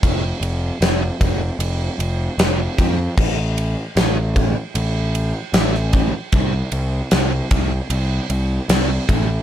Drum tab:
CC |----------------|x---------------|----------------|
RD |x-x-x-x-x-x-x-x-|--x-x-x-x-x-x-x-|x-x-x-x-x-x-x-x-|
SD |----o-------o---|----o-------oo--|----o-------o---|
BD |o-----o-------o-|o-----o-------o-|o-----o-------o-|